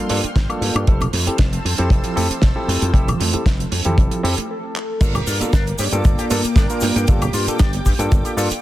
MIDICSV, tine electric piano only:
0, 0, Header, 1, 2, 480
1, 0, Start_track
1, 0, Tempo, 517241
1, 813, Time_signature, 4, 2, 24, 8
1, 7997, End_track
2, 0, Start_track
2, 0, Title_t, "Tine electric piano"
2, 0, Program_c, 0, 4
2, 86, Note_on_c, 0, 58, 94
2, 89, Note_on_c, 0, 62, 91
2, 92, Note_on_c, 0, 65, 84
2, 94, Note_on_c, 0, 69, 102
2, 183, Note_off_c, 0, 58, 0
2, 185, Note_off_c, 0, 62, 0
2, 186, Note_off_c, 0, 65, 0
2, 187, Note_off_c, 0, 69, 0
2, 457, Note_on_c, 0, 58, 91
2, 459, Note_on_c, 0, 62, 84
2, 462, Note_on_c, 0, 65, 82
2, 466, Note_on_c, 0, 69, 98
2, 784, Note_off_c, 0, 58, 0
2, 786, Note_off_c, 0, 62, 0
2, 787, Note_off_c, 0, 65, 0
2, 789, Note_off_c, 0, 69, 0
2, 807, Note_on_c, 0, 60, 86
2, 811, Note_on_c, 0, 64, 79
2, 813, Note_on_c, 0, 67, 77
2, 817, Note_on_c, 0, 69, 96
2, 957, Note_off_c, 0, 60, 0
2, 959, Note_off_c, 0, 64, 0
2, 960, Note_off_c, 0, 67, 0
2, 962, Note_off_c, 0, 69, 0
2, 1176, Note_on_c, 0, 60, 80
2, 1179, Note_on_c, 0, 64, 73
2, 1182, Note_on_c, 0, 67, 74
2, 1186, Note_on_c, 0, 69, 91
2, 1261, Note_off_c, 0, 60, 0
2, 1263, Note_off_c, 0, 64, 0
2, 1264, Note_off_c, 0, 67, 0
2, 1266, Note_off_c, 0, 69, 0
2, 1652, Note_on_c, 0, 60, 95
2, 1655, Note_on_c, 0, 64, 88
2, 1658, Note_on_c, 0, 67, 86
2, 1660, Note_on_c, 0, 69, 102
2, 1982, Note_off_c, 0, 60, 0
2, 1983, Note_off_c, 0, 64, 0
2, 1985, Note_off_c, 0, 67, 0
2, 1986, Note_off_c, 0, 69, 0
2, 2002, Note_on_c, 0, 60, 98
2, 2007, Note_on_c, 0, 64, 87
2, 2007, Note_on_c, 0, 67, 90
2, 2010, Note_on_c, 0, 69, 109
2, 2101, Note_off_c, 0, 60, 0
2, 2103, Note_off_c, 0, 64, 0
2, 2104, Note_off_c, 0, 67, 0
2, 2105, Note_off_c, 0, 69, 0
2, 2368, Note_on_c, 0, 60, 91
2, 2369, Note_on_c, 0, 64, 86
2, 2374, Note_on_c, 0, 67, 81
2, 2377, Note_on_c, 0, 69, 103
2, 2700, Note_off_c, 0, 60, 0
2, 2701, Note_off_c, 0, 64, 0
2, 2703, Note_off_c, 0, 67, 0
2, 2704, Note_off_c, 0, 69, 0
2, 2720, Note_on_c, 0, 60, 88
2, 2725, Note_on_c, 0, 64, 79
2, 2726, Note_on_c, 0, 67, 83
2, 2730, Note_on_c, 0, 69, 92
2, 2873, Note_off_c, 0, 60, 0
2, 2876, Note_off_c, 0, 64, 0
2, 2876, Note_off_c, 0, 67, 0
2, 2879, Note_off_c, 0, 69, 0
2, 3090, Note_on_c, 0, 60, 81
2, 3095, Note_on_c, 0, 64, 75
2, 3097, Note_on_c, 0, 67, 74
2, 3099, Note_on_c, 0, 69, 87
2, 3178, Note_off_c, 0, 60, 0
2, 3181, Note_off_c, 0, 64, 0
2, 3182, Note_off_c, 0, 67, 0
2, 3183, Note_off_c, 0, 69, 0
2, 3572, Note_on_c, 0, 60, 93
2, 3576, Note_on_c, 0, 64, 90
2, 3578, Note_on_c, 0, 67, 88
2, 3582, Note_on_c, 0, 69, 104
2, 3902, Note_off_c, 0, 60, 0
2, 3904, Note_off_c, 0, 64, 0
2, 3905, Note_off_c, 0, 67, 0
2, 3907, Note_off_c, 0, 69, 0
2, 3928, Note_on_c, 0, 60, 97
2, 3930, Note_on_c, 0, 64, 88
2, 3933, Note_on_c, 0, 67, 93
2, 3937, Note_on_c, 0, 69, 108
2, 4024, Note_off_c, 0, 60, 0
2, 4025, Note_off_c, 0, 64, 0
2, 4027, Note_off_c, 0, 67, 0
2, 4029, Note_off_c, 0, 69, 0
2, 4646, Note_on_c, 0, 58, 85
2, 4650, Note_on_c, 0, 62, 82
2, 4652, Note_on_c, 0, 65, 79
2, 4656, Note_on_c, 0, 69, 94
2, 4797, Note_off_c, 0, 58, 0
2, 4799, Note_off_c, 0, 62, 0
2, 4799, Note_off_c, 0, 65, 0
2, 4801, Note_off_c, 0, 69, 0
2, 5011, Note_on_c, 0, 58, 82
2, 5016, Note_on_c, 0, 62, 74
2, 5019, Note_on_c, 0, 65, 74
2, 5022, Note_on_c, 0, 69, 91
2, 5099, Note_off_c, 0, 58, 0
2, 5101, Note_off_c, 0, 62, 0
2, 5103, Note_off_c, 0, 65, 0
2, 5104, Note_off_c, 0, 69, 0
2, 5496, Note_on_c, 0, 58, 94
2, 5498, Note_on_c, 0, 62, 88
2, 5501, Note_on_c, 0, 65, 87
2, 5504, Note_on_c, 0, 69, 106
2, 5824, Note_off_c, 0, 58, 0
2, 5825, Note_off_c, 0, 62, 0
2, 5827, Note_off_c, 0, 65, 0
2, 5828, Note_off_c, 0, 69, 0
2, 5849, Note_on_c, 0, 58, 97
2, 5852, Note_on_c, 0, 62, 91
2, 5856, Note_on_c, 0, 65, 91
2, 5859, Note_on_c, 0, 69, 109
2, 5944, Note_off_c, 0, 58, 0
2, 5946, Note_off_c, 0, 62, 0
2, 5948, Note_off_c, 0, 65, 0
2, 5949, Note_off_c, 0, 69, 0
2, 6215, Note_on_c, 0, 58, 89
2, 6217, Note_on_c, 0, 62, 87
2, 6219, Note_on_c, 0, 65, 85
2, 6223, Note_on_c, 0, 70, 105
2, 6544, Note_off_c, 0, 58, 0
2, 6544, Note_off_c, 0, 62, 0
2, 6546, Note_off_c, 0, 65, 0
2, 6547, Note_off_c, 0, 70, 0
2, 6568, Note_on_c, 0, 58, 89
2, 6570, Note_on_c, 0, 62, 81
2, 6575, Note_on_c, 0, 65, 83
2, 6577, Note_on_c, 0, 69, 95
2, 6717, Note_off_c, 0, 58, 0
2, 6719, Note_off_c, 0, 62, 0
2, 6721, Note_off_c, 0, 65, 0
2, 6722, Note_off_c, 0, 69, 0
2, 6936, Note_on_c, 0, 58, 78
2, 6938, Note_on_c, 0, 62, 76
2, 6941, Note_on_c, 0, 65, 73
2, 6946, Note_on_c, 0, 69, 94
2, 7021, Note_off_c, 0, 58, 0
2, 7022, Note_off_c, 0, 62, 0
2, 7024, Note_off_c, 0, 65, 0
2, 7026, Note_off_c, 0, 69, 0
2, 7413, Note_on_c, 0, 58, 99
2, 7416, Note_on_c, 0, 62, 88
2, 7418, Note_on_c, 0, 65, 89
2, 7421, Note_on_c, 0, 69, 108
2, 7742, Note_off_c, 0, 58, 0
2, 7744, Note_off_c, 0, 62, 0
2, 7745, Note_off_c, 0, 65, 0
2, 7747, Note_off_c, 0, 69, 0
2, 7763, Note_on_c, 0, 58, 99
2, 7767, Note_on_c, 0, 62, 95
2, 7770, Note_on_c, 0, 65, 93
2, 7772, Note_on_c, 0, 69, 108
2, 7861, Note_off_c, 0, 58, 0
2, 7863, Note_off_c, 0, 62, 0
2, 7865, Note_off_c, 0, 65, 0
2, 7866, Note_off_c, 0, 69, 0
2, 7997, End_track
0, 0, End_of_file